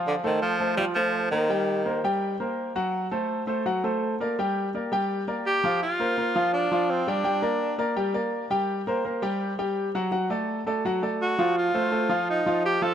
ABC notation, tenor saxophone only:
X:1
M:4/4
L:1/8
Q:1/4=167
K:Gm
V:1 name="Tenor saxophone"
D, E, F,2 G, F,2 E,- | E,3 z4 z | z8 | z6 G2 |
F4 D2 C D- | D3 z4 z | z8 | z6 ^F2 |
F4 E2 G A |]